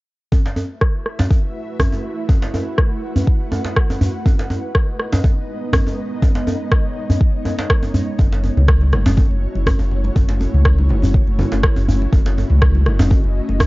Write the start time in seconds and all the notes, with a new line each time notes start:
0.32 A3 E4 F#4 B4 E5, kick, djembe tone
0.46 djembe slap
0.56 djembe tone
0.81 kick, cross-stick
1.06 cross-stick
1.19 djembe slap, djembe bass
1.31 kick, djembe tone
1.80 kick, cross-stick, djembe bass
1.92 djembe tone
2.29 F#5, kick, djembe tone
2.42 djembe slap
2.54 djembe tone
2.78 kick, cross-stick
3.16 djembe bass
3.27 kick
3.52 djembe tone
3.65 djembe slap
3.76 kick, cross-stick
3.90 djembe tone
4.01 djembe bass
4.26 G#3 B3 D#4 D#5, kick, djembe tone
4.39 djembe slap
4.50 djembe tone
4.75 kick, cross-stick
4.99 cross-stick
5.12 djembe slap, djembe bass
5.24 kick, djembe tone
5.73 kick, cross-stick, djembe bass
5.87 djembe tone
6.22 C#5, kick, djembe tone
6.35 djembe slap
6.47 djembe tone
6.72 kick, cross-stick
7.10 djembe bass
7.21 kick
7.45 djembe tone
7.59 djembe slap
7.70 kick, cross-stick
7.83 djembe tone
7.94 djembe bass
8.19 F#1 A3 C#4 E4 F#4 C#5, kick, djembe tone
8.33 djembe slap
8.44 muted conga, djembe tone
8.57 C#2, high conga, low conga
8.68 kick, cross-stick, muted conga
8.81 high conga
8.93 F#1, cross-stick, muted conga, high conga, low conga
9.06 djembe slap, high conga, djembe bass
9.17 kick, djembe tone, low conga
9.31 F#1, muted conga
9.55 F#1, muted conga, high conga
9.67 kick, cross-stick, djembe bass
9.79 F#1, muted conga, djembe tone
9.91 low conga
10.04 muted conga, high conga
10.16 F#1, kick, djembe tone
10.29 djembe slap
10.40 muted conga, djembe tone
10.54 C#2, low conga
10.65 kick, cross-stick
10.78 high conga
10.89 F#1, muted conga, high conga, low conga
11.02 high conga, djembe bass
11.14 kick, low conga
11.27 F#1, muted conga
11.39 high conga, djembe tone, low conga
11.52 F#1, muted conga, djembe slap
11.63 kick, cross-stick
11.76 F#1, muted conga, djembe tone
11.88 djembe bass
12.02 muted conga
12.13 F#1 D#5, kick, djembe tone
12.26 djembe slap
12.38 muted conga, djembe tone
12.50 C#2, high conga, low conga
12.62 kick, cross-stick, muted conga
12.75 high conga
12.86 F#1, cross-stick, muted conga, high conga, low conga
12.99 djembe slap, high conga, djembe bass
13.10 kick, djembe tone, low conga
13.24 F#1, muted conga
13.49 F#1, muted conga, high conga
13.60 kick, cross-stick, djembe bass